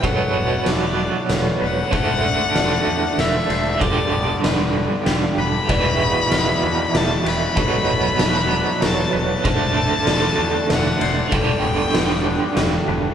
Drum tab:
RD |x-x-x-|x-x-xx|x-x-x-|x-x-xx|
SD |--o-o-|--o-o-|--o-o-|--o-o-|
BD |o-----|o-----|o-----|o-----|

RD |x-x-x-|x-x-xx|x-x-x-|
SD |--o-o-|--o-o-|--o-o-|
BD |o-----|o-----|o-----|